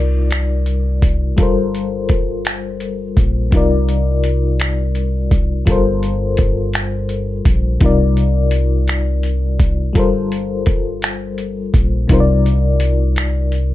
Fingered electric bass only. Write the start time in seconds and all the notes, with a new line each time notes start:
Already playing: C2
1.38 G1
3.17 A#1
3.53 C2
5.68 G1
7.46 A#1
7.82 C2
9.96 G1
11.74 A#1
12.10 C2